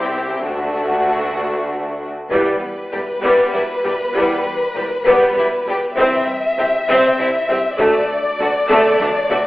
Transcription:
0.00 0.41 C2 soft
0.00 0.41 C2 medium
0.00 0.41 C4 soft
0.00 0.41 E4 soft
0.00 0.40 G4 soft
0.44 2.11 D2 soft
0.44 2.07 A3 soft
0.44 2.06 D4 soft
0.44 2.07 F#4 soft
2.30 2.39 E1 medium
2.30 2.39 E2 medium
2.30 2.52 E3 soft
2.30 2.52 G3 soft
2.30 2.60 G3 soft
2.30 2.52 B3 soft
2.30 2.60 B3 soft
2.30 2.52 E4 soft
2.30 5.93 B4 soft
2.30 taiko medium
2.92 3.01 E1 soft
2.92 3.00 E2 soft
2.92 3.00 G3 soft
2.92 3.00 G4 soft
3.22 3.31 E1 medium
3.22 3.31 E2 soft
3.22 3.52 G3 medium
3.22 3.51 B3 medium
3.22 taiko soft
3.53 3.63 E1 soft
3.53 3.62 E2 soft
3.53 3.62 G3 soft
3.53 3.61 E4 soft
3.84 3.93 E1 soft
3.84 3.93 E2 soft
3.84 3.92 G3 soft
3.84 3.92 G4 soft
4.13 4.23 E1 medium
4.13 4.23 E2 medium
4.13 4.36 E3 soft
4.13 4.43 G3 soft
4.13 4.36 G3 soft
4.13 4.42 B3 soft
4.13 4.36 B3 soft
4.13 4.36 E4 soft
4.75 4.84 E1 soft
4.75 4.83 E2 soft
4.75 4.84 G3 soft
4.75 4.83 G4 soft
5.06 5.14 E1 medium
5.06 5.14 E2 medium
5.06 5.34 G3 medium
5.06 5.34 B3 medium
5.37 5.45 E1 soft
5.37 5.45 E2 soft
5.37 5.45 G3 soft
5.37 5.46 E4 soft
5.67 5.75 E1 soft
5.67 5.75 E2 soft
5.67 5.76 G3 soft
5.67 5.77 G4 soft
5.95 6.05 C2 medium
5.95 6.06 C2 medium
5.95 6.19 E3 soft
5.95 6.20 G3 soft
5.95 6.17 C4 soft
5.95 6.26 C4 medium
5.95 6.26 C4 soft
5.95 6.17 G4 soft
5.95 7.76 E5 soft
5.95 taiko medium
6.58 6.67 C2 soft
6.58 6.66 C4 soft
6.58 6.67 G4 soft
6.88 6.96 C2 medium
6.88 6.98 C2 medium
6.88 7.17 C4 medium
7.19 7.27 C2 soft
7.19 7.27 C4 soft
7.19 7.28 E4 soft
7.49 7.57 C2 soft
7.49 7.58 C2 soft
7.49 7.58 C4 soft
7.49 7.58 G4 soft
7.79 7.87 D2 medium
7.79 7.88 D2 medium
7.79 8.00 D3 medium
7.79 8.07 A3 medium
7.79 8.00 A3 soft
7.79 8.07 A3 medium
7.79 8.01 D4 medium
7.79 8.01 F#4 medium
7.79 9.47 D5 medium
7.79 taiko medium
8.40 8.48 D2 soft
8.40 8.48 A3 soft
8.40 8.48 F#4 soft
8.69 8.78 D2 medium
8.69 8.79 D2 medium
8.69 8.97 A3 medium
8.69 8.98 A3 medium
8.69 taiko high medium
9.00 9.08 D2 soft
9.00 9.09 D2 soft
9.00 9.09 A3 soft
9.00 9.08 D4 soft
9.00 taiko mid medium
9.30 9.38 D2 soft
9.30 9.39 D2 soft
9.30 9.38 A3 medium
9.30 9.39 F#4 soft
9.30 taiko low medium

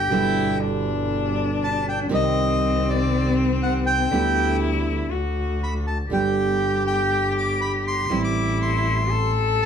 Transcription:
0.00 0.11 G3 medium
0.00 0.10 B3 medium
0.00 0.12 G4 medium
0.00 0.14 G4 medium
0.00 0.58 G5 loud
0.10 2.01 G1 medium
0.10 2.09 B2 medium
0.10 2.09 D3 medium
0.10 2.10 G3 medium
0.10 2.11 B3 medium
0.10 0.63 E4 medium
0.10 2.11 E4 medium
0.61 2.11 D4 medium
1.64 1.86 A5 medium
1.89 1.99 G5 medium
2.09 4.01 C2 medium
2.09 4.09 C3 medium
2.09 4.09 D#3 medium
2.09 4.09 G3 medium
2.09 4.13 C4 medium
2.09 4.10 C4 medium
2.09 4.10 G4 medium
2.14 2.90 D#5 medium
2.89 3.34 D5 medium
3.63 3.74 F#5 medium
3.86 4.57 G5 loud
4.11 5.06 D2 medium
4.11 5.10 D3 medium
4.11 5.10 G3 medium
4.11 5.10 B3 medium
4.11 5.12 E4 medium
4.11 5.11 G4 medium
5.11 6.06 D2 medium
5.11 5.86 F#4 medium
5.63 5.74 B5 medium
5.87 5.98 A5 medium
6.10 8.01 G1 medium
6.10 8.09 D3 medium
6.10 8.10 G3 medium
6.10 8.10 B3 medium
6.10 8.12 G4 medium
6.10 8.11 G4 medium
6.10 6.83 G5 medium
6.87 7.33 G5 medium
7.38 7.60 D6 medium
7.61 7.72 B5 medium
7.87 8.21 C6 medium
8.10 9.65 A1 medium
8.10 9.65 E3 medium
8.10 9.65 G3 medium
8.10 9.65 C4 medium
8.10 9.12 E4 medium
8.10 9.65 E4 medium
8.24 8.58 D6 medium
8.62 9.32 C6 medium
9.11 9.65 A4 medium
9.62 9.65 A5 medium

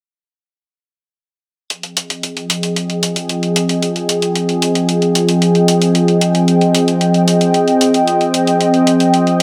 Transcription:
1.70 9.43 F3 medium
1.70 9.43 C4 medium
1.70 9.43 G#4 medium
1.70 9.43 D#5 medium
1.70 9.43 G5 medium
1.70 closed hi-hat soft
1.83 closed hi-hat soft
1.97 closed hi-hat medium
2.10 closed hi-hat soft
2.23 closed hi-hat soft
2.37 closed hi-hat soft
2.50 closed hi-hat medium
2.63 closed hi-hat soft
2.76 closed hi-hat soft
2.90 closed hi-hat soft
3.03 closed hi-hat medium
3.16 closed hi-hat soft
3.29 closed hi-hat soft
3.43 closed hi-hat soft
3.56 closed hi-hat medium
3.69 closed hi-hat soft
3.83 closed hi-hat medium
3.96 closed hi-hat soft
4.09 closed hi-hat medium
4.22 closed hi-hat soft
4.35 closed hi-hat soft
4.49 closed hi-hat soft
4.62 closed hi-hat medium
4.75 closed hi-hat medium
4.89 closed hi-hat medium
5.02 closed hi-hat soft
5.15 closed hi-hat medium
5.29 closed hi-hat medium
5.42 closed hi-hat soft
5.55 closed hi-hat soft
5.68 closed hi-hat medium
5.82 closed hi-hat medium
5.95 closed hi-hat soft
6.08 closed hi-hat soft
6.21 closed hi-hat medium
6.35 closed hi-hat soft
6.48 closed hi-hat soft
6.61 closed hi-hat soft
6.75 closed hi-hat medium
6.88 closed hi-hat soft
7.01 closed hi-hat medium
7.14 closed hi-hat soft
7.28 closed hi-hat medium
7.41 closed hi-hat soft
7.54 closed hi-hat soft
7.68 closed hi-hat soft
7.81 closed hi-hat medium
7.94 closed hi-hat soft
8.08 closed hi-hat soft
8.21 closed hi-hat soft
8.34 closed hi-hat medium
8.47 closed hi-hat soft
8.61 closed hi-hat soft
8.74 closed hi-hat soft
8.87 closed hi-hat medium
9.00 closed hi-hat soft
9.14 closed hi-hat soft
9.27 closed hi-hat soft

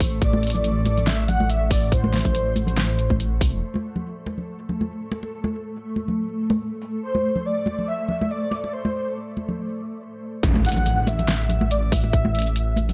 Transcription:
0.00 0.21 A1 loud
0.00 3.61 A3 medium
0.00 kick loud
0.00 open hi-hat medium
0.22 1.91 A1 loud
0.22 1.09 D5 loud
0.22 kick loud
0.22 closed hi-hat medium
0.33 high conga medium
0.43 closed hi-hat soft
0.47 closed hi-hat medium
0.50 closed hi-hat medium
0.55 low conga medium
0.55 shaker medium
0.64 closed hi-hat medium
0.86 closed hi-hat medium
0.86 high conga medium
0.86 shaker medium
0.97 closed hi-hat soft
0.97 low conga medium
1.07 1.30 E5 loud
1.07 snare loud
1.07 closed hi-hat medium
1.28 1.51 F#5 loud
1.28 closed hi-hat soft
1.28 low conga medium
1.40 high conga medium
1.49 1.70 E5 loud
1.49 closed hi-hat medium
1.49 shaker medium
1.71 1.91 D5 medium
1.71 kick loud
1.71 open hi-hat loud
1.92 3.43 A1 loud
1.92 3.16 C5 medium
1.92 kick loud
1.92 closed hi-hat medium
2.04 high conga medium
2.14 snare medium
2.14 closed hi-hat medium
2.17 closed hi-hat medium
2.21 closed hi-hat medium
2.25 kick medium
2.25 low conga medium
2.25 shaker medium
2.35 closed hi-hat medium
2.56 closed hi-hat medium
2.56 high conga medium
2.56 shaker medium
2.67 closed hi-hat soft
2.67 low conga medium
2.77 snare loud
2.77 closed hi-hat medium
2.99 closed hi-hat medium
3.10 kick medium
3.10 high conga medium
3.20 closed hi-hat medium
3.41 3.54 C2 medium
3.41 kick loud
3.41 open hi-hat loud
3.53 3.62 E1 loud
3.62 10.48 A3 medium
3.74 muted conga soft
3.74 high conga medium
3.96 low conga medium
4.26 muted conga medium
4.26 high conga medium
4.38 low conga medium
4.69 low conga medium
4.81 high conga medium
5.11 open hi-hat medium
5.11 muted conga medium
5.23 muted conga soft
5.44 high conga medium
5.96 high conga medium
6.08 low conga medium
6.50 muted conga medium
6.50 high conga medium
6.82 open hi-hat medium
7.03 7.47 C5 medium
7.15 muted conga soft
7.15 high conga medium
7.36 low conga medium
7.46 7.87 D5 medium
7.66 muted conga medium
7.66 high conga medium
7.79 low conga medium
7.88 8.08 E5 loud
8.09 8.32 E5 loud
8.09 low conga medium
8.21 high conga medium
8.31 8.72 D5 loud
8.51 open hi-hat medium
8.51 muted conga medium
8.64 muted conga soft
8.73 9.13 C5 medium
8.85 high conga medium
9.37 high conga medium
9.49 low conga medium
10.43 12.12 A1 loud
10.43 kick loud
10.43 closed hi-hat medium
10.43 impact medium
10.54 muted conga soft
10.54 high conga loud
10.65 11.09 F#5 loud
10.65 closed hi-hat medium
10.69 closed hi-hat medium
10.72 closed hi-hat medium
10.76 low conga medium
10.76 shaker medium
10.86 closed hi-hat medium
11.07 11.70 E5 loud
11.07 closed hi-hat medium
11.07 muted conga medium
11.07 high conga medium
11.07 shaker medium
11.19 closed hi-hat soft
11.19 low conga medium
11.28 snare loud
11.28 closed hi-hat medium
11.49 closed hi-hat medium
11.49 low conga medium
11.61 high conga loud
11.71 11.94 D5 medium
11.71 closed hi-hat medium
11.71 shaker medium
11.92 12.77 E5 loud
11.92 kick loud
11.92 open hi-hat loud
11.92 muted conga medium
12.04 muted conga medium
12.13 12.93 A1 loud
12.13 kick loud
12.13 closed hi-hat medium
12.25 high conga loud
12.35 closed hi-hat medium
12.39 closed hi-hat medium
12.42 closed hi-hat medium
12.46 shaker medium
12.56 closed hi-hat medium
12.76 closed hi-hat medium
12.76 high conga medium
12.76 shaker medium
12.89 closed hi-hat soft
12.89 low conga medium

